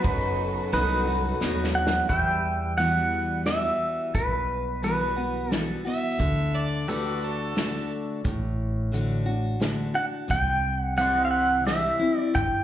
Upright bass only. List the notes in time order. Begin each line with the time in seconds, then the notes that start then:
0.05 F#1
0.73 C2
1.42 D#2
2.10 E2
4.15 B1
6.20 D2
8.25 A1
10.30 C2
12.36 G1